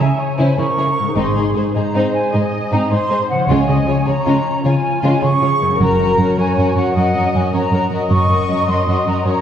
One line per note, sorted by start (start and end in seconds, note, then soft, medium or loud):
0.00 1.09 C#3 soft
0.00 1.02 G#3 soft
0.00 1.14 E4 soft
0.00 1.16 C#5 soft
0.00 0.19 E5 medium
0.00 0.59 G#5 soft
0.19 0.39 C#5 soft
0.38 0.46 C#3 soft
0.38 0.57 C#4 medium
0.38 0.56 E4 soft
0.38 0.58 C5 soft
0.58 0.66 C#3 soft
0.58 0.66 E4 soft
0.58 0.66 G#4 soft
0.58 1.15 A#4 soft
0.58 1.17 C#6 medium
0.77 0.85 C#3 soft
0.77 0.86 E4 soft
0.77 0.86 G#4 soft
0.77 0.86 C#5 soft
0.99 3.42 G#2 soft
1.03 4.93 G#3 soft
1.08 3.46 D#4 soft
1.13 1.24 G#2 medium
1.13 1.35 C4 soft
1.13 1.34 D#4 soft
1.13 1.73 G#4 soft
1.13 3.48 C5 soft
1.17 1.35 G#1 medium
1.17 1.35 D#4 soft
1.17 1.50 C6 medium
1.35 1.43 G#2 soft
1.35 1.43 D#4 soft
1.35 1.44 G#4 soft
1.55 1.63 G#2 soft
1.55 1.63 D#4 soft
1.55 1.63 G#4 soft
1.55 1.64 C5 soft
1.75 1.83 G#2 soft
1.75 1.83 D#4 soft
1.75 1.84 G#4 soft
1.75 2.33 C5 soft
1.75 2.13 A#5 medium
1.94 2.02 G#2 soft
1.94 2.13 C4 soft
1.94 2.12 D#4 medium
1.94 2.13 D#4 soft
2.13 2.33 G#5 medium
2.32 2.41 G#2 soft
2.32 2.41 D#4 soft
2.32 2.40 G#4 soft
2.32 2.41 C5 soft
2.32 2.90 D#5 medium
2.32 2.71 G#5 medium
2.71 2.79 G#2 medium
2.71 2.90 C4 soft
2.71 2.90 D#4 soft
2.71 2.90 A#5 medium
2.90 2.99 G#2 soft
2.90 2.99 D#4 soft
2.90 2.99 G#4 soft
2.90 3.49 C5 medium
2.90 3.28 C6 medium
3.10 3.18 G#2 soft
3.10 3.18 D#4 soft
3.10 3.18 G#4 soft
3.10 3.18 C5 soft
3.29 5.72 C#3 soft
3.29 3.48 F#5 medium
3.35 5.75 F3 soft
3.40 5.70 C#4 soft
3.44 3.67 C#2 medium
3.44 7.34 C#5 soft
3.49 3.57 C#3 medium
3.49 3.67 G#3 medium
3.49 3.67 C#4 medium
3.49 3.67 F4 medium
3.49 3.68 C#5 medium
3.49 4.07 G#5 medium
3.68 3.76 C#3 soft
3.68 3.77 C#4 soft
3.68 3.77 G#4 soft
3.68 3.88 D#5 medium
3.87 3.95 C#3 soft
3.87 3.95 C#4 soft
3.87 3.95 F4 soft
3.87 4.64 C#5 medium
3.87 3.96 C#5 soft
4.06 4.15 C#3 soft
4.06 4.15 C#4 soft
4.06 4.14 G#4 soft
4.06 4.64 A#5 medium
4.25 4.34 C#3 medium
4.25 4.44 G#3 medium
4.25 4.44 C#4 medium
4.25 4.43 F4 soft
4.64 4.72 C#3 soft
4.64 4.73 C#4 soft
4.64 5.21 F4 medium
4.64 4.73 F4 soft
4.64 4.72 C#5 soft
4.64 5.22 G#5 medium
5.03 5.11 C#3 medium
5.03 5.21 G#3 medium
5.03 5.21 C#4 medium
5.03 5.21 F4 medium
5.21 5.30 C#3 soft
5.21 5.30 C#4 soft
5.21 5.29 G#4 soft
5.21 5.80 G#4 soft
5.21 5.80 C#6 medium
5.41 5.49 C#3 soft
5.41 5.49 C#4 medium
5.41 5.49 F4 soft
5.41 5.49 C#5 soft
5.62 9.41 F#2 soft
5.66 9.41 F#3 soft
5.71 9.41 C#4 soft
5.75 5.98 C#4 medium
5.75 5.98 F#4 medium
5.75 9.41 A#4 soft
5.80 5.98 F#1 medium
5.80 5.88 F#2 medium
5.80 5.99 A#4 soft
5.80 6.37 A#4 medium
5.80 6.37 A#5 medium
5.99 6.07 F#2 soft
5.99 6.18 C#4 soft
5.99 6.18 F#4 soft
5.99 6.18 A#4 soft
6.18 6.26 F#2 medium
6.18 6.37 C#4 soft
6.18 6.37 F#4 soft
6.18 6.36 A#4 soft
6.37 6.45 F#2 medium
6.37 6.57 C#4 soft
6.37 6.56 F#4 soft
6.37 6.56 A#4 soft
6.37 6.96 C#5 medium
6.37 6.75 G#5 medium
6.57 6.64 F#2 medium
6.57 6.74 C#4 soft
6.57 6.74 F#4 soft
6.57 6.75 A#4 soft
6.75 6.84 F#2 soft
6.75 6.94 C#4 soft
6.75 6.94 F#4 soft
6.75 6.93 A#4 soft
6.75 6.95 F#5 medium
6.94 7.03 F#2 medium
6.94 7.13 C#4 soft
6.94 7.13 F#4 soft
6.94 7.13 A#4 soft
6.94 7.52 D#5 medium
6.94 7.34 F#5 medium
7.14 7.22 F#2 medium
7.14 7.31 C#4 soft
7.14 7.32 F#4 soft
7.14 7.32 A#4 soft
7.33 7.41 F#2 medium
7.33 7.51 C#4 soft
7.33 7.52 F#4 soft
7.33 7.50 A#4 soft
7.33 7.41 G#5 medium
7.51 7.61 F#2 medium
7.51 7.71 C#4 soft
7.51 7.71 F#4 soft
7.51 7.69 A#4 soft
7.51 7.61 C#5 medium
7.51 7.85 A#5 medium
7.70 7.79 F#2 soft
7.70 7.89 C#4 soft
7.70 7.89 F#4 soft
7.70 7.88 A#4 soft
7.70 7.81 A#4 medium
7.89 7.98 F#2 medium
7.89 8.08 C#4 soft
7.89 8.08 F#4 soft
7.89 8.08 A#4 soft
7.89 9.23 D#5 medium
8.09 8.28 F#1 medium
8.09 8.17 F#2 medium
8.09 8.27 C#4 soft
8.09 8.28 F#4 medium
8.09 8.28 A#4 soft
8.09 8.67 C#6 medium
8.29 8.37 F#2 soft
8.29 8.47 C#4 soft
8.29 8.47 F#4 soft
8.29 8.48 A#4 soft
8.48 8.56 F#2 soft
8.48 8.66 C#4 soft
8.48 8.66 F#4 soft
8.48 8.67 A#4 soft
8.68 8.75 F#2 soft
8.68 8.86 C#4 soft
8.68 8.86 F#4 soft
8.68 8.86 A#4 soft
8.68 9.07 C6 medium
8.87 8.94 F#2 soft
8.87 9.05 C#4 soft
8.87 9.04 F#4 soft
8.87 9.04 A#4 soft
9.05 9.14 F#2 soft
9.05 9.24 C#4 soft
9.05 9.24 F#4 soft
9.05 9.24 A#4 soft
9.05 9.24 A#5 medium
9.25 9.33 F#2 medium
9.25 9.41 C#4 soft
9.25 9.41 F#4 soft
9.25 9.41 A#4 soft
9.25 9.41 C#5 soft
9.25 9.41 A#5 medium